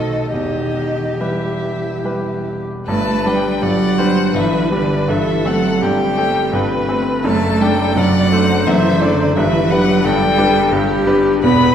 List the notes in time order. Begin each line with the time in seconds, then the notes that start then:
Already playing: B1 B2 D#3 A3 F#4 A4 C5 D#5
0.32 E1 E2 D#3 G4 D#5
1.19 E3 G3 G4 B4 E5
2.04 G3 G4 B4
2.87 G1 G2 A3 B4 A5
3.26 G3 D4 B4 G5
3.62 G1 G2 F#3 D5 F#5
3.98 G3 D4 B4 C5
4.34 G1 G2 E3 B4 E5
4.72 D3 G3 D4 B4 D5
5.08 G1 G2 E3 A4 E5
5.45 F#3 A3 C4 A4 F#5
5.82 G1 G2 G3 G4 G5
6.18 A3 C4 A4
6.52 G1 G2 B4
6.88 A3 C4 A4
7.24 F#1 F#2 A3 A4 A5
7.61 G3 A3 D4 A4 G5
7.96 F#1 F#2 F#3 D5 F#5
8.32 A3 D4 A4 C5
8.66 F#1 F#2 E3 E5
9.01 D3 A3 D4 A4 D5
9.37 G1 G2 E3 B4 E5
9.70 F#3 G3 D4 B4 F#5
10.03 G1 G2 G3 A4 G5
10.38 G3 D4 B4
10.71 G1 G2 G4
11.07 G3 D4 B4
11.42 E1 E2 B3 B4 B5